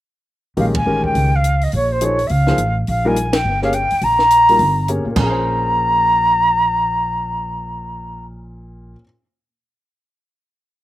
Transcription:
0.57 0.84 A#1 medium
0.57 0.73 D#3 medium
0.57 0.73 G#3 medium
0.57 0.73 C#4 medium
0.57 0.73 G4 medium
0.57 0.74 A#4 medium
0.57 0.65 F5 medium
0.57 open hi-hat soft
0.75 1.03 G#5 medium
0.75 kick medium
0.75 ride medium
0.86 1.13 A1 medium
0.86 1.29 D#3 medium
0.86 1.29 G#3 soft
0.86 1.29 C#4 soft
0.86 1.29 G4 soft
0.86 1.29 A#4 medium
1.04 1.37 G5 medium
1.04 kick soft
1.15 1.69 C#2 medium
1.15 open hi-hat soft
1.35 1.65 F5 medium
1.44 closed hi-hat soft
1.61 1.73 D#5 medium
1.61 open hi-hat soft
1.72 2.27 A#1 medium
1.72 1.93 C#5 medium
1.72 open hi-hat soft
1.92 2.05 C5 medium
2.01 2.17 F3 medium
2.01 2.17 A#3 soft
2.01 2.17 D#4 soft
2.01 2.17 G#4 soft
2.01 2.17 C5 medium
2.01 2.28 C#5 medium
2.01 closed hi-hat medium
2.19 open hi-hat soft
2.27 2.56 C#2 medium
2.27 2.32 E5 medium
2.27 2.76 F5 medium
2.27 open hi-hat soft
2.47 2.57 F3 medium
2.47 2.57 A#3 soft
2.47 2.58 D#4 soft
2.47 2.58 G#4 soft
2.47 2.58 C5 medium
2.47 snare soft
2.58 2.85 A1 medium
2.58 closed hi-hat medium
2.87 3.42 A#1 medium
2.87 3.09 F5 medium
2.87 open hi-hat soft
3.05 3.15 G3 medium
3.05 3.15 A#3 medium
3.05 3.15 D#4 medium
3.05 3.15 F4 medium
3.05 3.15 A#4 medium
3.05 3.36 G#5 medium
3.16 closed hi-hat medium
3.33 3.62 G5 loud
3.33 snare medium
3.33 ride medium
3.45 3.88 G1 medium
3.62 3.72 A#3 medium
3.62 3.72 C#4 medium
3.62 3.72 G4 medium
3.62 3.72 G#4 medium
3.62 3.72 C#5 medium
3.62 3.75 F5 medium
3.62 snare soft
3.73 4.05 G5 medium
3.73 closed hi-hat soft
3.90 muted upright bass stroke soft
3.90 open hi-hat soft
4.01 4.56 A#1 medium
4.01 4.89 A#5 medium
4.01 open hi-hat soft
4.19 snare soft
4.30 closed hi-hat medium
4.49 4.58 G3 medium
4.49 4.59 A#3 soft
4.49 4.59 D#4 soft
4.49 4.59 F4 soft
4.49 4.59 A#4 medium
4.49 open hi-hat soft
4.59 5.02 G1 medium
4.59 open hi-hat soft
4.88 5.04 A#3 medium
4.88 5.04 C#4 soft
4.88 5.04 G4 soft
4.88 5.04 G#4 soft
4.88 5.05 C#5 medium
4.88 closed hi-hat soft
5.05 8.92 A#2 medium
5.05 muted upright bass stroke soft
5.11 8.95 A#3 medium
5.16 8.94 A#1 medium
5.16 8.99 C#4 medium
5.16 8.25 A#5 medium
5.16 kick medium
5.16 floor tom medium
5.16 china medium
5.23 9.02 G#4 medium
5.30 9.05 C5 medium

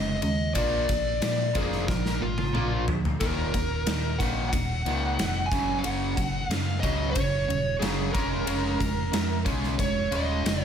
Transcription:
0.00 0.19 F1 medium
0.00 0.19 C#3 medium
0.00 0.19 G#3 medium
0.00 0.21 D#5 medium
0.22 0.52 D#2 medium
0.22 0.52 C#3 medium
0.22 0.52 G#3 medium
0.22 0.54 D#5 medium
0.22 ride medium
0.54 0.85 A#1 medium
0.54 0.87 A#2 medium
0.54 0.87 F3 loud
0.54 0.87 A#3 loud
0.54 1.21 D5 medium
0.54 kick loud
0.54 ride medium
0.89 1.19 A#1 medium
0.89 1.19 A#2 medium
0.89 1.19 F3 medium
0.89 kick medium
0.89 ride medium
1.21 1.51 A#2 medium
1.21 1.52 A#2 medium
1.21 1.52 F3 medium
1.21 1.56 D5 medium
1.21 snare loud
1.21 ride medium
1.55 1.84 F1 medium
1.55 1.86 A#2 medium
1.55 1.87 F3 medium
1.55 1.87 A#3 medium
1.55 1.87 G#4 medium
1.55 kick medium
1.55 ride medium
1.72 snare soft
1.88 2.18 A#1 medium
1.88 2.18 A#2 medium
1.88 2.18 F3 medium
1.88 2.22 A#4 medium
1.88 kick loud
1.88 snare medium
2.06 snare medium
2.22 2.51 G#1 medium
2.22 2.51 A#2 medium
2.22 2.51 F3 medium
2.22 2.83 F4 medium
2.38 high tom medium
2.54 2.83 A#1 medium
2.54 2.85 A#2 medium
2.54 2.86 F3 medium
2.54 2.86 A#3 medium
2.54 mid tom medium
2.86 3.16 D2 medium
2.86 3.17 A#2 medium
2.86 3.17 F3 medium
2.86 floor tom medium
3.05 floor tom medium
3.20 3.50 D#1 medium
3.20 3.52 D#2 medium
3.20 3.52 A#2 medium
3.20 3.52 D#3 loud
3.20 4.22 A#4 medium
3.20 kick loud
3.20 ride medium
3.54 3.83 D#1 medium
3.54 3.83 D#2 medium
3.54 3.84 A#2 medium
3.54 kick medium
3.54 ride medium
3.87 4.16 D#2 medium
3.87 4.17 D#2 medium
3.87 4.17 A#2 medium
3.87 snare loud
3.87 ride medium
4.18 4.49 A#1 medium
4.18 4.51 D#2 medium
4.18 4.51 A#2 medium
4.18 4.52 D#3 loud
4.18 4.48 F#5 medium
4.18 kick medium
4.18 ride medium
4.49 4.82 D#1 medium
4.49 5.53 F#5 medium
4.49 kick loud
4.53 4.83 D#2 medium
4.53 4.83 A#2 medium
4.53 ride medium
4.85 5.15 C#2 medium
4.85 5.16 D#2 medium
4.85 5.17 A#2 medium
4.85 5.17 D#3 medium
4.85 ride medium
5.18 5.48 F1 medium
5.18 5.48 D#2 medium
5.18 5.48 A#2 medium
5.18 snare loud
5.18 ride medium
5.46 5.79 G#5 medium
5.52 5.81 F#1 medium
5.52 5.82 F#2 loud
5.52 5.83 C#3 medium
5.52 5.83 F#3 medium
5.52 kick loud
5.52 snare soft
5.52 ride medium
5.79 6.49 F#5 loud
5.84 6.14 F#1 medium
5.84 6.15 F#2 medium
5.84 6.16 C#3 medium
5.84 6.16 F#3 medium
5.84 ride medium
6.17 6.47 F#1 medium
6.17 6.47 F#2 medium
6.17 6.47 C#3 medium
6.17 kick medium
6.17 ride medium
6.49 6.79 F#2 medium
6.49 6.80 F#2 medium
6.49 6.80 C#3 medium
6.49 6.84 F5 loud
6.49 snare loud
6.49 ride medium
6.80 7.13 C#2 medium
6.80 7.14 F#2 medium
6.80 7.14 C#3 medium
6.80 7.15 F#3 medium
6.80 7.11 D#5 medium
6.80 kick medium
6.80 ride medium
7.11 7.45 F#2 medium
7.11 7.76 C#5 medium
7.15 7.45 F#1 medium
7.15 7.46 C#3 medium
7.15 kick loud
7.15 ride medium
7.48 7.79 D#1 medium
7.48 7.79 F#2 medium
7.48 7.79 C#3 medium
7.48 ride medium
7.79 8.11 F#1 medium
7.79 8.12 F#2 medium
7.79 8.12 C#3 medium
7.79 8.13 F#3 medium
7.79 8.11 G#4 medium
7.79 snare loud
7.79 ride medium
8.13 8.44 F1 medium
8.13 8.45 C#3 medium
8.13 8.46 G#3 medium
8.13 8.46 C#4 loud
8.13 9.42 A#4 medium
8.13 kick loud
8.13 ride medium
8.47 8.77 F1 medium
8.47 8.78 C#3 medium
8.47 8.78 G#3 loud
8.47 8.79 C#4 loud
8.47 ride loud
8.79 9.10 F1 medium
8.79 9.10 C#3 medium
8.79 9.10 G#3 medium
8.79 kick medium
8.79 ride medium
9.12 9.42 F2 medium
9.12 9.43 C#3 medium
9.12 9.43 G#3 medium
9.12 snare loud
9.12 ride medium
9.45 9.76 B1 medium
9.45 9.77 C#3 medium
9.45 9.77 G#3 medium
9.45 9.77 C#4 loud
9.45 kick medium
9.45 ride medium
9.64 snare soft
9.78 10.09 F1 loud
9.78 10.09 C#3 medium
9.78 10.09 G#3 medium
9.78 10.11 C#5 loud
9.78 kick loud
9.78 ride medium
10.11 10.41 D#1 medium
10.11 10.43 C#3 medium
10.11 10.43 G#3 medium
10.11 10.44 C#4 loud
10.11 ride medium
10.15 10.61 D#5 loud
10.45 10.65 F1 medium
10.45 10.65 C#3 medium
10.45 10.65 G#3 medium
10.45 snare loud
10.45 ride medium
10.61 10.65 C#5 loud

